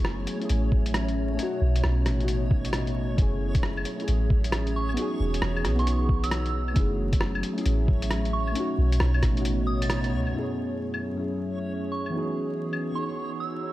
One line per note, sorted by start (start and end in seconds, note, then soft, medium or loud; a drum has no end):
0.00 0.26 F#1 loud
0.00 1.39 F#3 medium
0.00 0.36 A3 medium
0.00 4.97 A3 medium
0.00 0.33 B3 medium
0.00 0.37 C#4 medium
0.00 2.12 C#4 medium
0.00 0.39 E4 medium
0.00 0.33 F#4 medium
0.00 0.40 G#4 loud
0.00 1.39 G#4 medium
0.00 10.34 C#5 medium
0.05 cross-stick loud
0.27 closed hi-hat medium
0.37 1.33 A3 medium
0.37 1.36 C#4 medium
0.41 1.38 E4 medium
0.41 1.39 G#4 medium
0.41 1.39 E5 medium
0.41 closed hi-hat soft
0.49 1.38 A1 medium
0.49 closed hi-hat medium
0.72 kick loud
0.86 closed hi-hat medium
0.94 cross-stick loud
0.94 closed hi-hat medium
1.09 closed hi-hat soft
1.35 2.15 A3 medium
1.35 2.16 C#4 medium
1.39 3.18 B2 medium
1.39 2.18 D#4 medium
1.39 2.19 F#4 loud
1.39 closed hi-hat medium
1.52 3.91 B3 medium
1.61 1.83 B1 medium
1.71 3.91 C#5 medium
1.76 closed hi-hat medium
1.84 2.07 B1 loud
1.84 cross-stick loud
2.06 3.17 A1 medium
2.06 cross-stick medium
2.06 closed hi-hat soft
2.17 3.13 A3 medium
2.17 3.16 C#4 medium
2.17 closed hi-hat soft
2.22 3.17 D#4 medium
2.22 3.18 F#4 medium
2.22 3.18 D#5 medium
2.28 closed hi-hat medium
2.51 kick loud
2.65 closed hi-hat medium
2.73 cross-stick loud
2.73 closed hi-hat medium
2.87 closed hi-hat soft
3.14 4.97 F#3 medium
3.14 3.94 A3 medium
3.14 3.96 C#4 medium
3.14 kick loud
3.18 3.84 F#1 loud
3.18 3.97 E4 medium
3.18 closed hi-hat soft
3.22 3.98 G#4 loud
3.53 5.70 C#4 medium
3.53 8.56 G#4 medium
3.53 kick loud
3.53 closed hi-hat soft
3.63 cross-stick loud
3.77 claves medium
3.85 closed hi-hat soft
3.96 4.94 A3 medium
3.96 4.95 C#4 medium
3.96 closed hi-hat soft
4.01 4.96 E4 medium
4.01 4.98 G#4 medium
4.01 4.97 E5 medium
4.08 4.97 A1 medium
4.08 closed hi-hat soft
4.30 kick loud
4.44 closed hi-hat soft
4.52 cross-stick loud
4.52 closed hi-hat soft
4.67 closed hi-hat soft
4.76 4.99 C#6 medium
4.89 claves soft
4.94 5.74 B3 medium
4.94 5.75 D#4 medium
4.94 closed hi-hat soft
4.98 6.77 E3 medium
4.98 5.76 F#4 medium
5.02 5.78 G#4 loud
5.13 7.49 B3 medium
5.20 5.41 E1 medium
5.34 closed hi-hat soft
5.42 5.66 E1 loud
5.42 cross-stick loud
5.56 6.76 D#4 medium
5.56 claves medium
5.65 6.75 B1 loud
5.65 cross-stick medium
5.65 closed hi-hat soft
5.70 7.49 F#4 medium
5.75 6.73 B3 medium
5.75 6.74 D#4 medium
5.75 6.02 C#6 medium
5.75 closed hi-hat soft
5.80 6.75 F#4 medium
5.80 6.76 G#4 medium
5.87 closed hi-hat soft
6.09 kick medium
6.24 6.68 E6 medium
6.24 closed hi-hat soft
6.31 cross-stick loud
6.31 closed hi-hat soft
6.46 closed hi-hat soft
6.68 claves soft
6.72 7.42 F#1 loud
6.72 7.52 A3 medium
6.72 7.54 C#4 medium
6.72 kick loud
6.72 closed hi-hat medium
6.76 8.55 F#3 medium
6.76 7.55 E4 medium
6.76 7.56 G#4 loud
7.02 9.28 C#4 medium
7.13 kick medium
7.13 closed hi-hat medium
7.21 cross-stick loud
7.33 12.14 A3 medium
7.33 claves medium
7.43 closed hi-hat soft
7.53 8.51 A3 medium
7.53 8.53 C#4 medium
7.58 8.54 E4 medium
7.58 8.55 G#4 medium
7.58 8.55 E5 medium
7.58 closed hi-hat soft
7.66 8.54 A1 medium
7.66 closed hi-hat medium
7.88 kick medium
8.02 closed hi-hat medium
8.11 cross-stick medium
8.11 closed hi-hat medium
8.25 closed hi-hat soft
8.33 8.57 C#6 medium
8.47 claves soft
8.52 10.34 B2 medium
8.52 9.32 A3 medium
8.52 9.33 C#4 medium
8.52 closed hi-hat medium
8.57 9.34 D#4 medium
8.57 9.36 F#4 loud
8.73 11.08 B3 medium
8.78 8.99 B1 medium
8.92 11.07 C#5 medium
8.92 closed hi-hat medium
9.00 9.24 B1 loud
9.00 cross-stick loud
9.14 claves medium
9.23 10.14 A1 medium
9.23 kick medium
9.23 cross-stick medium
9.23 closed hi-hat medium
9.33 10.31 A3 medium
9.33 10.32 C#4 medium
9.37 10.33 D#4 medium
9.37 10.35 F#4 medium
9.37 10.34 D#5 medium
9.37 closed hi-hat soft
9.45 closed hi-hat medium
9.67 9.79 D#6 medium
9.82 10.12 A6 medium
9.82 closed hi-hat medium
9.90 cross-stick loud
9.90 closed hi-hat medium
10.04 closed hi-hat soft
10.13 10.28 C#2 loud
10.27 10.34 B1 medium
10.27 claves soft
10.31 11.11 F#2 medium
10.31 12.14 F#3 medium
10.31 11.11 A3 medium
10.31 11.13 C#4 medium
10.36 11.14 E4 medium
10.36 11.15 G#4 medium
10.36 13.73 C#5 medium
10.59 12.86 C#4 medium
10.94 claves medium
11.13 12.10 F#2 medium
11.13 12.11 A3 medium
11.13 13.73 G#4 medium
11.17 12.12 C#4 medium
11.17 12.13 E4 medium
11.17 12.13 E5 medium
11.21 12.14 G#4 medium
11.92 12.15 C#6 medium
12.06 claves soft
12.10 12.90 E3 medium
12.10 13.73 E3 medium
12.10 12.91 B3 medium
12.14 12.92 D#4 medium
12.14 12.93 F#4 medium
12.14 12.94 G#4 medium
12.32 13.73 B3 medium
12.73 claves medium
12.91 13.73 E3 medium
12.91 13.73 B3 medium
12.91 13.73 D#4 medium
12.91 13.19 C#6 medium
12.97 13.73 D#4 medium
12.97 13.73 F#4 medium
12.97 13.73 G#4 medium
13.40 13.73 E6 medium